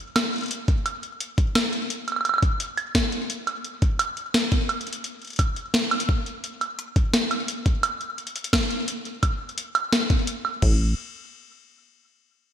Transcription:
0.16 snare loud
0.16 closed hi-hat medium
0.16 high woodblock medium
0.33 closed hi-hat soft
0.36 closed hi-hat soft
0.38 closed hi-hat soft
0.41 closed hi-hat soft
0.43 closed hi-hat soft
0.46 closed hi-hat soft
0.48 closed hi-hat soft
0.51 closed hi-hat medium
0.68 kick loud
0.68 closed hi-hat soft
0.86 closed hi-hat medium
0.86 high woodblock soft
1.03 closed hi-hat soft
1.20 closed hi-hat medium
1.38 kick loud
1.38 closed hi-hat soft
1.55 snare loud
1.55 closed hi-hat medium
1.55 high woodblock medium
1.73 closed hi-hat soft
1.90 closed hi-hat medium
2.08 closed hi-hat soft
2.08 high woodblock soft
2.12 high woodblock soft
2.16 high woodblock soft
2.21 high woodblock soft
2.25 closed hi-hat medium
2.25 high woodblock medium
2.29 high woodblock medium
2.34 high woodblock medium
2.38 high woodblock medium
2.43 kick loud
2.43 closed hi-hat soft
2.60 closed hi-hat medium
2.77 closed hi-hat soft
2.77 high woodblock soft
2.95 kick loud
2.95 snare loud
2.95 closed hi-hat medium
3.12 closed hi-hat soft
3.30 closed hi-hat medium
3.47 closed hi-hat soft
3.47 high woodblock medium
3.64 closed hi-hat medium
3.82 kick loud
3.82 closed hi-hat soft
3.99 closed hi-hat medium
3.99 high woodblock medium
4.17 closed hi-hat soft
4.34 snare loud
4.34 closed hi-hat medium
4.52 kick loud
4.52 closed hi-hat soft
4.69 closed hi-hat soft
4.69 high woodblock medium
4.81 closed hi-hat medium
4.87 closed hi-hat soft
4.93 closed hi-hat medium
5.04 closed hi-hat medium
5.22 closed hi-hat soft
5.25 closed hi-hat soft
5.27 closed hi-hat soft
5.30 closed hi-hat soft
5.33 closed hi-hat soft
5.36 closed hi-hat soft
5.39 kick loud
5.39 closed hi-hat medium
5.39 high woodblock medium
5.56 closed hi-hat soft
5.74 snare loud
5.74 closed hi-hat medium
5.91 closed hi-hat soft
5.91 high woodblock medium
6.00 closed hi-hat medium
6.09 kick loud
6.26 closed hi-hat soft
6.44 closed hi-hat medium
6.61 closed hi-hat soft
6.61 high woodblock soft
6.79 closed hi-hat medium
6.96 kick loud
6.96 closed hi-hat soft
7.14 snare loud
7.14 closed hi-hat medium
7.31 closed hi-hat soft
7.31 high woodblock medium
7.48 closed hi-hat medium
7.66 kick loud
7.66 closed hi-hat soft
7.83 closed hi-hat medium
7.83 high woodblock medium
8.01 closed hi-hat soft
8.18 closed hi-hat soft
8.27 closed hi-hat medium
8.36 closed hi-hat medium
8.44 closed hi-hat medium
8.53 kick loud
8.53 snare loud
8.53 closed hi-hat medium
8.53 high woodblock medium
8.55 closed hi-hat soft
8.58 closed hi-hat soft
8.60 closed hi-hat soft
8.63 closed hi-hat soft
8.65 closed hi-hat soft
8.68 closed hi-hat soft
8.70 closed hi-hat soft
8.88 closed hi-hat medium
9.05 closed hi-hat soft
9.23 kick loud
9.23 closed hi-hat medium
9.23 high woodblock medium
9.49 closed hi-hat soft
9.58 closed hi-hat medium
9.75 closed hi-hat soft
9.75 high woodblock medium
9.93 snare loud
9.93 closed hi-hat medium
10.10 kick loud
10.10 closed hi-hat soft
10.27 closed hi-hat medium
10.45 high woodblock medium
10.62 10.95 A1 medium
10.62 kick loud
10.62 crash medium

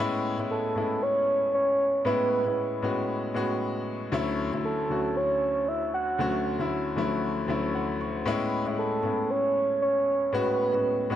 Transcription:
0.00 0.30 A2 loud
0.00 0.30 G#3 loud
0.00 0.30 B3 loud
0.00 0.30 C#4 loud
0.00 0.31 E4 loud
0.38 0.69 A2 medium
0.38 0.69 G#3 medium
0.38 0.69 B3 medium
0.38 0.70 C#4 medium
0.38 0.70 E4 medium
0.51 1.04 A4 loud
0.76 1.59 A2 medium
0.76 1.59 G#3 medium
0.76 1.60 B3 medium
0.76 1.60 C#4 medium
0.76 1.60 E4 medium
1.02 1.53 C#5 loud
1.54 2.02 C#5 loud
2.05 2.37 A2 loud
2.05 2.37 G#3 medium
2.05 2.37 B3 medium
2.05 2.37 C#4 medium
2.05 2.38 E4 loud
2.05 3.05 B4 loud
2.45 2.76 A2 medium
2.45 2.76 G#3 medium
2.45 2.76 B3 medium
2.45 2.76 C#4 medium
2.45 2.77 E4 medium
2.82 3.25 A2 loud
2.82 3.25 G#3 medium
2.82 3.26 B3 medium
2.82 3.26 C#4 medium
2.82 3.26 F#4 loud
3.34 3.98 A2 medium
3.34 3.98 G#3 medium
3.34 3.98 B3 medium
3.34 3.98 C#4 medium
3.34 3.99 F#4 loud
4.12 4.44 D2 loud
4.12 4.44 F#3 loud
4.12 4.44 A3 loud
4.12 4.44 C#4 loud
4.12 4.45 E4 loud
4.52 4.83 D2 medium
4.52 4.83 F#3 medium
4.52 4.83 A3 medium
4.52 4.83 C#4 medium
4.52 4.84 E4 medium
4.65 5.18 A4 medium
4.89 5.73 D2 medium
4.89 5.73 F#3 medium
4.89 5.73 A3 medium
4.89 5.74 C#4 medium
4.89 5.74 F#4 medium
5.17 5.70 C#5 loud
5.68 5.94 E5 loud
5.94 6.67 F#5 loud
6.19 6.50 D2 loud
6.19 6.51 F#3 medium
6.19 6.51 A3 loud
6.19 6.51 C#4 medium
6.19 6.51 F#4 loud
6.59 6.89 D2 medium
6.59 6.90 F#3 medium
6.59 6.90 A3 medium
6.59 6.90 C#4 medium
6.59 6.91 E4 loud
6.96 7.39 D2 medium
6.96 7.04 F3 medium
6.96 7.39 A3 medium
6.96 7.40 C#4 medium
6.96 7.40 E4 loud
7.03 7.42 F#3 medium
7.48 8.11 D2 medium
7.48 8.12 F#3 medium
7.48 8.12 A3 medium
7.48 8.12 C#4 medium
7.48 8.12 E4 loud
7.48 7.73 E5 medium
7.75 7.99 F#5 medium
8.01 8.25 C#6 medium
8.26 8.57 A2 loud
8.26 8.58 G#3 loud
8.26 8.58 B3 loud
8.26 8.58 C#4 loud
8.26 8.58 E4 loud
8.65 8.96 A2 medium
8.65 8.97 G#3 medium
8.65 8.97 B3 medium
8.65 8.97 C#4 medium
8.65 8.97 E4 medium
8.78 9.32 A4 loud
9.03 9.87 A2 medium
9.03 9.87 G#3 medium
9.03 9.87 B3 medium
9.03 9.87 C#4 medium
9.03 9.88 E4 medium
9.30 9.81 C#5 loud
9.82 10.35 C#5 loud
10.33 10.64 A2 loud
10.33 10.65 G#3 medium
10.33 10.65 B3 medium
10.33 10.65 C#4 medium
10.33 10.65 F#4 loud
10.33 11.16 B4 loud
10.72 11.03 A2 medium
10.72 11.04 G#3 medium
10.72 11.04 B3 medium
10.72 11.04 C#4 medium
10.72 11.04 F#4 medium
11.10 11.16 A2 loud
11.10 11.16 G#3 medium
11.10 11.16 B3 medium
11.10 11.16 C#4 medium
11.10 11.16 F#4 loud

